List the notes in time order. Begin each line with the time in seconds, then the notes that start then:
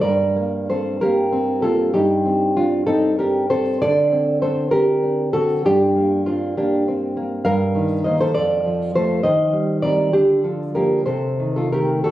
0.01 G2 A#4 D5
0.36 A#3
0.70 C4 A4 C5
1.01 A#3 G4 A#4
1.32 C4
1.62 A#3 F4 A4
1.94 G2 D#4 G4
2.25 C4
2.57 D4 F4
2.87 C4 D#4 A4
3.19 D4 G4 A#4
3.50 C4 A4 C5
3.82 D3 A4 D5
4.12 C4
4.42 D4 A4 C5
4.71 C4 G4 A#4
5.03 D4
5.33 C4 F#4 A4
5.65 G2 D4 G4
5.96 A#3
6.26 C4 D4 F4
6.57 A#3 D4 G4
6.88 C4
7.17 A#3
7.45 G2 A#4 F5
7.75 D#3
8.04 D#3 A#3 C5 D#5
8.21 A4 C5
8.35 F2 A4 D5
8.65 F3
8.95 F3 A3 A4 C5
9.23 D#3 C5 D#5
9.53 G3
9.82 G3 C4 A#4 D5
10.13 D3 D4 G4
10.44 F3 F4 A4
10.75 F3 A#3 G4 A#4
11.06 C3 A4 C5
11.39 D#3
11.56 F4 A4
11.72 D#3 A3 G4 A#4
12.04 D3 F#4 A4